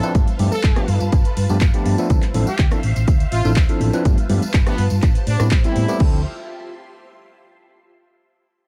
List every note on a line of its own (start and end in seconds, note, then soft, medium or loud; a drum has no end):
0.00 0.12 F3 loud
0.00 0.12 C4 medium
0.00 0.12 D4 medium
0.00 0.12 E4 loud
0.00 0.12 B4 loud
0.00 0.13 C5 medium
0.00 0.13 E5 medium
0.00 0.13 F5 medium
0.00 closed hi-hat soft
0.00 tambourine medium
0.15 0.23 G1 loud
0.15 2.08 F4 medium
0.15 2.08 B4 medium
0.15 2.08 A5 medium
0.15 kick loud
0.15 closed hi-hat medium
0.15 tambourine medium
0.15 high conga medium
0.15 low conga medium
0.28 closed hi-hat medium
0.28 tambourine soft
0.39 0.47 G2 loud
0.39 0.51 F3 medium
0.39 0.51 A3 medium
0.39 0.51 B3 medium
0.39 0.51 D4 medium
0.39 0.51 G4 medium
0.39 open hi-hat loud
0.39 low conga medium
0.52 1.01 A4 loud
0.52 muted fingered electric bass stroke soft
0.52 tambourine medium
0.63 0.72 G1 medium
0.63 kick loud
0.63 clap loud
0.63 closed hi-hat medium
0.76 0.83 F3 loud
0.76 0.83 A3 medium
0.76 0.83 B3 medium
0.76 0.83 D4 medium
0.76 0.83 G4 loud
0.76 cross-stick medium
0.76 closed hi-hat medium
0.76 tambourine soft
0.76 high conga medium
0.88 0.96 G2 loud
0.88 open hi-hat medium
1.00 1.08 G2 medium
1.00 closed hi-hat soft
1.00 tambourine medium
1.12 1.25 G1 medium
1.12 kick loud
1.12 closed hi-hat medium
1.12 tambourine medium
1.24 muted fingered electric bass stroke soft
1.24 closed hi-hat medium
1.24 tambourine soft
1.37 1.45 G2 medium
1.37 open hi-hat loud
1.49 1.63 G2 loud
1.49 1.56 F3 medium
1.49 1.56 A3 medium
1.49 1.56 B3 medium
1.49 1.56 D4 medium
1.49 1.56 G4 loud
1.49 tambourine medium
1.61 1.69 G1 medium
1.61 kick loud
1.61 clap loud
1.61 closed hi-hat medium
1.61 tambourine medium
1.73 1.95 F3 medium
1.73 1.95 A3 medium
1.73 1.95 B3 medium
1.73 1.96 D4 medium
1.73 1.96 G4 medium
1.73 closed hi-hat medium
1.73 tambourine soft
1.86 1.94 G2 medium
1.86 open hi-hat medium
1.86 high conga medium
1.98 2.07 F3 loud
1.98 2.07 A3 medium
1.98 2.07 B3 medium
1.98 2.07 D4 medium
1.98 2.08 A4 loud
1.98 closed hi-hat soft
1.98 tambourine medium
2.10 2.18 D2 loud
2.10 4.03 C5 medium
2.10 4.03 E5 medium
2.10 4.03 F5 medium
2.10 kick loud
2.10 closed hi-hat medium
2.10 tambourine medium
2.10 high conga medium
2.10 low conga medium
2.22 clap soft
2.22 closed hi-hat medium
2.22 tambourine soft
2.34 2.42 A1 loud
2.34 2.46 F3 medium
2.34 2.46 C4 medium
2.34 2.46 D4 medium
2.34 2.46 E4 medium
2.34 2.46 A4 loud
2.34 open hi-hat loud
2.34 low conga medium
2.47 2.65 G4 loud
2.47 tambourine medium
2.59 2.67 D2 medium
2.59 kick loud
2.59 clap loud
2.59 closed hi-hat medium
2.59 tambourine medium
2.71 2.78 F3 medium
2.71 2.78 C4 medium
2.71 2.78 D4 medium
2.71 2.78 E4 medium
2.71 2.78 A4 loud
2.71 cross-stick medium
2.71 closed hi-hat medium
2.71 tambourine soft
2.71 high conga medium
2.83 2.91 A1 loud
2.83 open hi-hat medium
2.96 3.03 A1 loud
2.96 closed hi-hat soft
2.96 tambourine medium
3.08 kick loud
3.08 closed hi-hat medium
3.08 tambourine medium
3.20 closed hi-hat medium
3.20 tambourine soft
3.32 3.40 A1 medium
3.32 3.50 F4 loud
3.32 open hi-hat loud
3.44 3.57 A1 loud
3.44 3.51 F3 medium
3.44 3.51 C4 medium
3.44 3.51 D4 medium
3.44 3.51 E4 medium
3.44 3.51 A4 loud
3.44 tambourine medium
3.56 3.64 D2 medium
3.56 kick loud
3.56 clap loud
3.56 closed hi-hat medium
3.56 tambourine medium
3.69 3.90 F3 medium
3.69 3.90 C4 medium
3.69 3.90 D4 medium
3.69 3.90 E4 medium
3.69 3.91 A4 loud
3.69 closed hi-hat medium
3.80 3.89 A1 loud
3.80 open hi-hat medium
3.80 high conga medium
3.93 4.02 F3 loud
3.93 4.02 C4 loud
3.93 4.02 D4 loud
3.93 4.02 E4 medium
3.93 4.02 B4 loud
3.93 closed hi-hat soft
3.93 tambourine medium
4.05 4.13 G1 loud
4.05 5.02 F4 medium
4.05 5.02 B4 medium
4.05 5.98 A5 medium
4.05 kick loud
4.05 closed hi-hat medium
4.05 tambourine medium
4.05 high conga medium
4.05 low conga medium
4.18 closed hi-hat medium
4.18 tambourine soft
4.29 4.37 G2 loud
4.29 4.41 F3 medium
4.29 4.41 A3 medium
4.29 4.41 B3 medium
4.29 4.41 D4 medium
4.29 4.41 G4 medium
4.29 open hi-hat loud
4.29 low conga medium
4.42 muted fingered electric bass stroke soft
4.42 closed hi-hat soft
4.42 tambourine medium
4.54 4.62 G1 medium
4.54 kick loud
4.54 clap loud
4.54 closed hi-hat medium
4.66 4.73 F3 loud
4.66 4.73 A3 medium
4.66 4.84 B3 loud
4.66 4.73 B3 medium
4.66 4.73 D4 medium
4.66 4.73 G4 loud
4.66 cross-stick medium
4.66 closed hi-hat medium
4.66 tambourine soft
4.66 high conga medium
4.78 4.86 G2 loud
4.78 open hi-hat medium
4.90 4.98 G2 loud
4.90 closed hi-hat soft
4.90 tambourine medium
5.02 5.15 A1 medium
5.02 5.99 G4 medium
5.02 5.99 C5 medium
5.02 kick loud
5.02 clap soft
5.02 closed hi-hat medium
5.02 tambourine medium
5.15 muted fingered electric bass stroke soft
5.15 closed hi-hat medium
5.15 tambourine soft
5.27 5.35 A2 medium
5.27 5.45 D4 loud
5.27 open hi-hat loud
5.40 5.53 A2 loud
5.40 5.46 G3 medium
5.40 5.46 A3 medium
5.40 5.46 B3 medium
5.40 5.47 C4 medium
5.40 5.47 E4 loud
5.40 cross-stick medium
5.40 closed hi-hat soft
5.40 tambourine medium
5.51 5.60 A1 medium
5.51 kick loud
5.51 clap loud
5.51 closed hi-hat medium
5.51 tambourine medium
5.64 5.85 G3 medium
5.64 5.85 A3 medium
5.64 5.86 B3 medium
5.64 5.86 C4 medium
5.64 6.00 E4 medium
5.64 5.86 E4 loud
5.64 closed hi-hat medium
5.64 tambourine soft
5.76 5.84 A2 medium
5.76 open hi-hat medium
5.76 high conga medium
5.88 5.97 G3 loud
5.88 5.97 A3 medium
5.88 5.97 B3 medium
5.88 5.98 C4 medium
5.88 5.98 G4 loud
5.88 closed hi-hat soft
5.88 tambourine medium
5.99 6.23 D2 loud
5.99 6.18 F3 medium
5.99 6.18 C4 medium
5.99 6.19 D4 medium
5.99 6.19 E4 medium
5.99 6.23 F4 medium
5.99 6.19 A4 loud
5.99 6.23 E5 medium
5.99 6.23 C6 medium
5.99 kick loud
5.99 crash medium